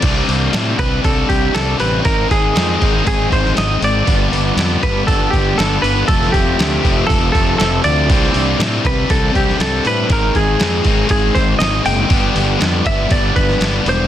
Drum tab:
CC |x---------------|----------------|----------------|----------------|
HH |o-o-o-o-o-o-o-o-|o-o-o-o-o-o-o-o-|o-o-o-o-o-o-o-o-|o-o-o-o-o-o-o-o-|
SD |----o-------o---|----o------oo---|----o-------o---|-o--o-------o---|
BD |o-----o-o-o-----|o-o---o-o-o-----|o-----o-o-o-----|o-o---o-o-o-----|

CC |----------------|----------------|----------------|
HH |o-o-o-o-o-o-o-o-|o-o-o-o-o-o-o-o-|o-o-o-o-o-o-o-o-|
SD |-o--o------oo---|----o-------o---|----o------oo---|
BD |o-----o-o-o-----|o-o---o-o-o-----|o-----o-o-o-----|